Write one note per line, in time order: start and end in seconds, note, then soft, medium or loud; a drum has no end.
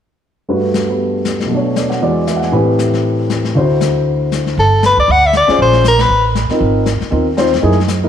0.49 1.51 G2 soft
0.49 1.51 G3 soft
0.49 1.49 A3 soft
0.49 1.51 F#4 soft
0.49 0.89 B4 soft
0.49 brush sweep soft
0.74 snare soft
0.74 hi-hat pedal soft
0.87 1.50 B3 soft
0.87 1.51 G4 soft
0.87 1.52 B4 soft
1.00 brush sweep soft
1.25 snare soft
1.25 hi-hat pedal medium
1.40 snare soft
1.45 1.99 B2 soft
1.45 2.00 F#3 soft
1.51 2.02 A3 soft
1.51 2.04 D4 soft
1.51 brush sweep soft
1.57 2.05 C#5 soft
1.76 1.95 D5 soft
1.76 snare medium
1.76 hi-hat pedal soft
1.90 2.07 F#5 soft
1.90 snare soft
2.01 2.53 E2 soft
2.01 2.50 E3 soft
2.01 2.53 G#3 soft
2.01 2.53 F#4 soft
2.01 2.54 D5 medium
2.01 brush sweep soft
2.27 2.41 E5 soft
2.27 snare soft
2.27 hi-hat pedal soft
2.36 2.49 F#5 soft
2.42 2.57 G#5 soft
2.42 snare soft
2.52 3.55 A2 medium
2.52 3.55 E3 soft
2.52 3.55 C4 soft
2.52 3.55 G4 soft
2.52 3.55 B4 medium
2.52 brush sweep soft
2.79 snare medium
2.79 hi-hat pedal medium
2.94 snare soft
3.05 brush sweep soft
3.30 snare soft
3.30 hi-hat pedal soft
3.44 snare soft
3.55 4.57 D2 medium
3.55 4.57 D3 soft
3.55 4.58 E4 soft
3.55 4.58 F#4 soft
3.55 4.58 C5 medium
3.55 brush sweep soft
3.81 snare medium
3.81 hi-hat pedal medium
4.07 brush sweep soft
4.32 snare soft
4.32 hi-hat pedal soft
4.46 snare soft
4.57 4.95 G1 medium
4.57 4.82 A4 medium
4.57 brush sweep soft
4.83 4.98 B4 medium
4.83 snare medium
4.83 hi-hat pedal soft
4.97 5.07 D2 medium
4.97 5.13 D5 medium
5.08 5.45 D2 medium
5.08 5.28 F#5 medium
5.08 brush sweep soft
5.26 5.35 E5 medium
5.33 5.59 D5 medium
5.33 snare medium
5.33 hi-hat pedal soft
5.48 5.82 C#4 medium
5.48 5.82 F4 medium
5.48 5.83 G#4 soft
5.48 5.83 C5 medium
5.48 muted upright bass stroke soft
5.48 snare soft
5.58 6.07 A#1 medium
5.58 5.84 C5 medium
5.58 brush sweep soft
5.73 snare soft
5.84 6.03 A#4 medium
5.84 snare medium
5.84 hi-hat pedal medium
5.99 6.26 B4 medium
5.99 snare medium
5.99 ride medium
6.09 6.47 A1 medium
6.09 brush sweep soft
6.35 snare soft
6.35 hi-hat pedal soft
6.49 6.84 C4 medium
6.49 6.85 D#4 medium
6.49 6.85 F4 medium
6.49 6.85 A#4 medium
6.49 muted upright bass stroke soft
6.49 snare soft
6.60 6.98 G#1 medium
6.60 brush sweep soft
6.86 snare medium
6.86 hi-hat pedal soft
7.01 muted upright bass stroke soft
7.01 snare soft
7.11 7.60 D#2 medium
7.11 7.24 C4 medium
7.11 7.25 D#4 soft
7.11 7.25 F4 soft
7.11 7.25 A#4 medium
7.11 brush sweep soft
7.37 7.50 C4 medium
7.37 7.50 D#4 medium
7.37 7.51 F4 medium
7.37 7.51 C5 medium
7.37 snare soft
7.37 hi-hat pedal soft
7.46 snare soft
7.53 snare soft
7.55 snare soft
7.61 8.09 F#2 medium
7.61 7.75 A#3 medium
7.61 7.75 D#4 soft
7.61 7.76 E4 soft
7.61 7.76 G#4 medium
7.61 brush sweep soft
7.72 snare soft
7.80 snare soft
7.88 snare medium
7.88 hi-hat pedal medium
8.03 8.09 A#3 soft
8.03 8.09 D#4 soft
8.03 8.09 E4 soft
8.03 8.09 A#4 medium